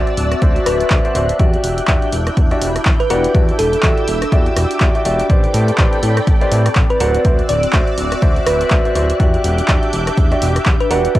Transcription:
Already playing: C4 F#4 C5 D5 E5 A5 E6 F#6
0.07 closed hi-hat
0.17 D1, open hi-hat
0.32 cross-stick, closed hi-hat
0.42 D2 F#4 C5 D5 E5, kick, closed hi-hat
0.56 closed hi-hat
0.66 D1 B4, cross-stick, open hi-hat
0.80 closed hi-hat
0.90 D2 F#4 C5 D5 E5, kick, clap, closed hi-hat
1.05 F#4 C5 D5 E5, closed hi-hat
1.15 D1 F#4 C5 D5 E5, open hi-hat
1.29 closed hi-hat
1.39 E2 D4 F#4 G4 D5 E5 D6 G6, kick, closed hi-hat
1.53 closed hi-hat
1.64 E1, open hi-hat
1.78 closed hi-hat
1.82 E4
1.88 E2 F#4 G4 D5 E5, kick, clap, closed hi-hat
2.02 closed hi-hat
2.12 E1, open hi-hat
2.27 cross-stick, closed hi-hat
2.37 E2, kick, closed hi-hat
2.51 F#4 G4 D5 E5, closed hi-hat
2.61 E1, open hi-hat
2.76 cross-stick, closed hi-hat
2.85 E2, kick, clap, closed hi-hat
3.00 B4, closed hi-hat
3.10 E1 F#4 G4 B4 D5 F#5, open hi-hat
3.24 closed hi-hat
3.34 E2 F#4 G4 D5 E5 E6, kick, closed hi-hat
3.49 closed hi-hat
3.59 E1 A4, open hi-hat
3.73 closed hi-hat
3.83 E2 F#4 G4 D5 E5, kick, clap, closed hi-hat
3.97 closed hi-hat
4.08 E1, open hi-hat
4.22 cross-stick, closed hi-hat
4.32 E2 F#4 G4 D5 E5, kick, closed hi-hat
4.46 closed hi-hat
4.56 E1, cross-stick, open hi-hat
4.71 closed hi-hat
4.80 E2 F#4 G4 D5 E5, kick, clap, closed hi-hat
4.95 F#4 G4 D5 E5, closed hi-hat
5.05 E1 F#4 G4 D5 E5, open hi-hat
5.19 closed hi-hat
5.30 A1 C4 G4 A4 B4 C5 D5 G5 B5, kick, closed hi-hat
5.44 D5, closed hi-hat
5.54 A2, open hi-hat
5.68 closed hi-hat
5.78 A1 G4 B4 C5 D5, kick, clap, closed hi-hat
5.93 closed hi-hat
6.03 A2, open hi-hat
6.17 cross-stick, closed hi-hat
6.27 A1, kick, closed hi-hat
6.41 G4 B4 C5 D5, closed hi-hat
6.52 A2, open hi-hat
6.66 cross-stick, closed hi-hat
6.75 A1, kick, clap, closed hi-hat
6.90 B4, closed hi-hat
7.00 D1 F#4 B4 C5 D5 F#5 D6 E6 F#6, open hi-hat
7.14 F#4, closed hi-hat
7.25 D2 F#4 C5 D5 E5, kick, closed hi-hat
7.39 closed hi-hat
7.49 D1 D5, open hi-hat
7.63 closed hi-hat
7.73 D2 F#4 C5 D5 E5, kick, clap, closed hi-hat
7.88 E5, closed hi-hat
7.98 D1, open hi-hat
8.12 cross-stick, closed hi-hat
8.22 D2 F#4 C5 D5 E5, kick, closed hi-hat
8.36 closed hi-hat
8.47 D1 B4, cross-stick, open hi-hat
8.61 closed hi-hat
8.70 D2 F#4 C5 D5 E5, kick, clap, closed hi-hat
8.85 F#4 C5 D5 E5, closed hi-hat
8.95 D1 F#4 C5 D5 E5, open hi-hat
9.10 closed hi-hat
9.20 E2 D4 F#4 G4 D5 E5 D6 G6, kick, closed hi-hat
9.34 closed hi-hat
9.44 E1, open hi-hat
9.58 closed hi-hat
9.65 E2 F#4 G4 D5 E5, kick, clap, closed hi-hat
9.83 closed hi-hat
9.93 E1, open hi-hat
10.07 cross-stick, closed hi-hat
10.17 E2, kick, closed hi-hat
10.32 F#4 G4 D5 E5, closed hi-hat
10.42 E1, open hi-hat
10.56 cross-stick, closed hi-hat
10.66 E2, kick, clap, closed hi-hat
10.80 B4, closed hi-hat
10.91 E1 F#4 G4 B4 D5 F#5, open hi-hat
11.05 closed hi-hat
11.15 E2 F#4 G4 D5 E5, kick, closed hi-hat

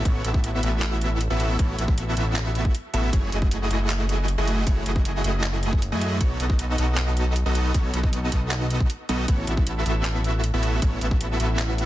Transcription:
0.05 A1 F#4 C#5, kick, closed hi-hat
0.24 A1 B3 E4 F#4 A4 E5, closed hi-hat
0.34 kick
0.44 closed hi-hat
0.63 A1 B3 E4 F#4 A4 E5, closed hi-hat
0.82 clap, closed hi-hat
1.01 closed hi-hat
1.21 closed hi-hat
1.30 A1 B3 E4 F#4 A4 E5
1.40 closed hi-hat
1.59 A1 C#5, kick, closed hi-hat
1.78 A1 B3 E4 F#4 A4 E5, closed hi-hat
1.88 kick
1.98 closed hi-hat
2.17 A1 B3 E4 F#4 A4 E5, closed hi-hat
2.36 clap, closed hi-hat
2.55 closed hi-hat
2.65 kick
2.75 closed hi-hat
2.94 A1 B3 E4 F#4 A4 E5, closed hi-hat
3.13 F#1 A3 F#4 C#5, kick, closed hi-hat
3.32 F#1 A3 E4 F#4 G#4 D#5, closed hi-hat
3.42 kick
3.51 closed hi-hat
3.70 F#1 A3 E4 F#4 G#4 D#5, closed hi-hat
3.90 clap, closed hi-hat
4.09 closed hi-hat
4.28 closed hi-hat
4.38 F#1 A3 E4 F#4 G#4 D#5
4.47 closed hi-hat
4.67 F#1 A3 E4 F#4 G#4 C#5, kick, closed hi-hat
4.86 F#1 A3 E4 F#4 G#4 D#5, closed hi-hat
4.96 kick
5.05 closed hi-hat
5.24 F#1 A3 E4 F#4 G#4 D#5, closed hi-hat
5.44 clap, closed hi-hat
5.63 closed hi-hat
5.73 kick
5.82 closed hi-hat
5.92 F#2 A3 E4 F#4 G#4 D#5
6.01 closed hi-hat
6.21 B1 B3 C#5, kick, closed hi-hat
6.40 B1 B3 D#4 F#4 A4 D#5, closed hi-hat
6.50 kick
6.59 closed hi-hat
6.78 B1 B3 D#4 F#4 A4 D#5, closed hi-hat
6.97 clap, closed hi-hat
7.17 closed hi-hat
7.36 closed hi-hat
7.46 B1 B3 D#4 F#4 A4 D#5
7.55 closed hi-hat
7.74 B1 B3, kick, closed hi-hat
7.94 B1 B3 D#4 F#4 A4 D#5, closed hi-hat
8.03 kick
8.13 closed hi-hat
8.32 B1 B3 D#4 F#4 A4 D#5, kick, closed hi-hat
8.51 clap, closed hi-hat
8.70 closed hi-hat
8.80 kick
8.90 closed hi-hat
9.09 B1 B3 D#4 F#4 A4 D#5, closed hi-hat
9.28 A1 B3 E4 F#4, kick, closed hi-hat
9.47 A1 B3 E4 F#4 A4 E5, closed hi-hat
9.57 kick
9.67 closed hi-hat
9.86 A1 B3 E4 F#4 A4 E5, closed hi-hat
10.05 clap, closed hi-hat
10.24 closed hi-hat
10.44 closed hi-hat
10.54 A1 B3 E4 F#4 A4 E5
10.63 closed hi-hat
10.82 A1 B3 E4 F#4 A4 C#5, kick, closed hi-hat
11.01 A1 B3 E4 F#4 A4 E5, closed hi-hat
11.11 kick
11.21 closed hi-hat
11.40 A1 B3 E4 F#4 A4 E5, closed hi-hat
11.59 clap, closed hi-hat
11.78 closed hi-hat

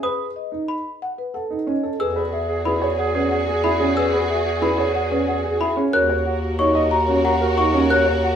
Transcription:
0.03 B4 D#6
0.36 D#5
0.52 D#4
0.68 B5
1.02 F#5
1.18 B4
1.34 A4 F#5
1.50 D#4
1.67 C#4 D#5
1.83 A4
2.00 E2 F#4 G#4 B4 E6
2.16 G#4 B4
2.32 G#4 E5
2.49 G#4
2.65 E4 G#4 B4 B5
2.82 G#4 C#5
2.99 G#4 F#5
3.15 C#4 G#4 B4
3.31 G#4 F#5
3.47 G#4
3.64 E4 G#4 E5 B5
3.80 C#4 G#4
3.96 G#4 B4 E6
4.13 G#4 B4
4.29 G#4 E5
4.46 G#4
4.62 E4 G#4 B4 B5
4.78 G#4 C#5
4.94 G#4 F#5
5.11 C#4 G#4 B4
5.28 G#4 F#5
5.44 G#4
5.60 E4 G#4 E5 B5
5.76 C#4 G#4
5.93 D#2 F#4 A#4 C#5 F#6
6.09 F#4 C#5
6.26 F#4 F#5
6.42 F#4
6.59 D#4 F#4 C#5 C#6
6.75 F#4 D#5
6.91 F#4 A#5
7.08 C#4 F#4 C#5
7.25 F#4 F#5 A#5
7.41 F#4 A#4
7.57 D#4 F#4 F#5 C#6
7.74 C#4 F#4 A#4
7.90 F#4 A#4 C#5 F#6
8.06 F#4 C#5
8.23 F#4 F#5

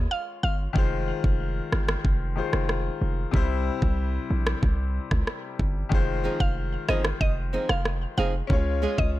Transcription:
Already playing: G#3 C#4 F4 C#5
0.11 F5
0.43 G1 F5
0.73 F1 D#3 G#3 F4, kick
0.78 C5
1.24 F1, kick
1.72 G1, cross-stick
1.89 cross-stick
2.05 F1, kick
2.36 D#3 G#3 F4 C5
2.53 F1, cross-stick
2.69 cross-stick
3.02 F1
3.31 C2 C3 G3 E4, kick
3.36 C5
3.82 C2, kick
4.30 A#1
4.47 cross-stick
4.63 C2, kick
5.11 C#2, kick, cross-stick
5.27 cross-stick
5.59 G1, kick
5.89 F1 D#3 G#3 F4, kick
5.94 C5
6.24 F3 C4 D#4 G#4
6.40 F1 F5, kick
6.88 G1 F3 C4 D#4 G#4 D#5, cross-stick
7.05 cross-stick
7.21 F1 D#5, kick
7.53 F3 C4 D#4 G#4
7.69 F1 F5, cross-stick
7.85 cross-stick
8.17 F1 F3 C4 D#4 G#4 F5
8.47 C#2 G#3 C#4 F4, kick
8.52 C#5
8.82 G#3 C#4 F4 G#4
8.98 C#2 D#5, kick

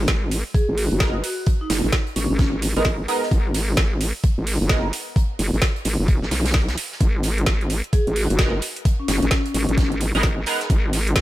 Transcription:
0.08 G#1, kick, snare, closed hi-hat
0.31 closed hi-hat, open hi-hat
0.54 G#4, kick, closed hi-hat
0.69 G#1
0.78 F#4, open hi-hat
0.91 F#1 F#4, closed hi-hat
1.00 G#3 B3 D#4 A#4, kick, snare, closed hi-hat
1.24 F#4, closed hi-hat, open hi-hat
1.46 kick, closed hi-hat
1.61 D#4
1.70 F#1 D#4, snare, closed hi-hat, open hi-hat
1.84 G#1, closed hi-hat
1.92 kick, snare, closed hi-hat
2.07 closed hi-hat
2.16 G#1 C#4, closed hi-hat, open hi-hat
2.30 G#1 C#4
2.39 kick, snare, closed hi-hat
2.62 closed hi-hat, open hi-hat
2.76 G#1 G#3 B3 D#4 A#4, open hi-hat
2.85 kick, snare, closed hi-hat
3.08 G#3 B3 D#4 A#4, closed hi-hat, open hi-hat
3.23 snare
3.31 G#1, kick, closed hi-hat
3.54 snare, closed hi-hat, open hi-hat
3.77 G#1, kick, snare, closed hi-hat
4.01 closed hi-hat, open hi-hat
4.24 kick, closed hi-hat
4.38 G#1
4.47 open hi-hat
4.61 F#1, closed hi-hat
4.69 G#3 B3 D#4 A#4, kick, snare, closed hi-hat
4.93 closed hi-hat, open hi-hat
5.16 kick, closed hi-hat
5.39 F#1, closed hi-hat, open hi-hat
5.53 G#1, closed hi-hat
5.62 kick, snare, closed hi-hat
5.76 closed hi-hat
5.85 G#1, closed hi-hat, open hi-hat
5.99 F#1
6.08 kick, closed hi-hat
6.22 G#1, snare
6.31 B1, snare, closed hi-hat, open hi-hat
6.46 snare, closed hi-hat, open hi-hat
6.54 kick, snare, closed hi-hat
6.68 snare, closed hi-hat
6.77 closed hi-hat, open hi-hat
6.92 snare
7.01 G#1, kick, closed hi-hat
7.23 snare, closed hi-hat, open hi-hat
7.38 closed hi-hat
7.46 G#1, kick, snare, closed hi-hat
7.61 closed hi-hat
7.70 closed hi-hat, open hi-hat
7.84 closed hi-hat
7.93 G#4, kick, closed hi-hat
8.07 G#1, closed hi-hat
8.16 F#4, open hi-hat
8.30 F#1 F#4, closed hi-hat
8.39 G#3 B3 D#4 A#4, kick, snare, closed hi-hat
8.62 closed hi-hat, open hi-hat
8.76 closed hi-hat
8.85 kick, closed hi-hat
8.99 C#4
9.08 F#1, snare, closed hi-hat, open hi-hat
9.22 G#1, closed hi-hat
9.31 kick, snare, closed hi-hat
9.46 closed hi-hat
9.54 G#1 C#4, closed hi-hat, open hi-hat
9.69 G#1, closed hi-hat
9.78 kick, snare, closed hi-hat
9.92 closed hi-hat
10.01 closed hi-hat, open hi-hat
10.15 G#1 G#3 B3 D#4 A#4, open hi-hat
10.23 kick, snare, closed hi-hat
10.46 G#3 B3 D#4 A#4, closed hi-hat, open hi-hat
10.61 snare, closed hi-hat
10.70 G#1, kick, closed hi-hat
10.93 snare, closed hi-hat, open hi-hat
11.07 closed hi-hat
11.16 G#1, kick, snare, closed hi-hat

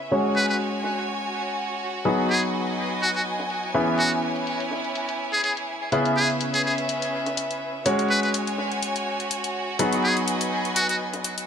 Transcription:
0.12 G#3 C#4 F#4 G#4 C#5 G#5, closed hi-hat
0.36 B4
0.49 B4, closed hi-hat
0.73 closed hi-hat
0.84 snare
1.08 closed hi-hat
1.22 closed hi-hat
1.57 closed hi-hat
1.70 closed hi-hat
2.05 F#3 B3 D#4 F#4 G#4 B4 D#5 G#5, closed hi-hat
2.18 closed hi-hat
2.29 G#4
2.43 closed hi-hat
2.53 closed hi-hat
2.67 closed hi-hat
2.91 closed hi-hat
3.02 F#4, closed hi-hat
3.15 F#4, closed hi-hat
3.39 snare, closed hi-hat
3.50 closed hi-hat, open hi-hat
3.63 closed hi-hat
3.74 E3 B3 C#4 E4 G#4 B4 C#5
3.99 F#4, closed hi-hat
4.12 closed hi-hat
4.36 closed hi-hat
4.47 closed hi-hat
4.60 closed hi-hat
4.71 snare
4.84 closed hi-hat
4.95 closed hi-hat
5.09 closed hi-hat
5.33 G#4, closed hi-hat
5.44 G#4, closed hi-hat
5.57 closed hi-hat
5.92 C#3 B3 C#4 E4 G#4 B4 E5, closed hi-hat
6.05 closed hi-hat
6.16 G#4
6.30 closed hi-hat
6.41 closed hi-hat
6.54 G#4, closed hi-hat
6.65 G#4
6.78 closed hi-hat
6.89 closed hi-hat
7.02 closed hi-hat
7.26 snare, closed hi-hat
7.37 closed hi-hat, open hi-hat
7.51 closed hi-hat
7.86 G#3 C#4 F#4 G#4 C#5 G#5, closed hi-hat
7.99 closed hi-hat
8.10 B4
8.23 B4, closed hi-hat
8.34 closed hi-hat
8.47 closed hi-hat
8.58 snare
8.72 closed hi-hat
8.83 closed hi-hat
8.96 closed hi-hat
9.20 closed hi-hat
9.31 closed hi-hat
9.44 closed hi-hat
9.79 F#3 B3 D#4 F#4 G#4 B4 D#5 G#5, closed hi-hat
9.93 closed hi-hat
10.04 G#4
10.17 closed hi-hat
10.28 closed hi-hat
10.41 closed hi-hat
10.65 closed hi-hat
10.76 F#4, closed hi-hat
10.89 F#4, closed hi-hat
11.13 snare, closed hi-hat
11.24 closed hi-hat, open hi-hat
11.38 closed hi-hat

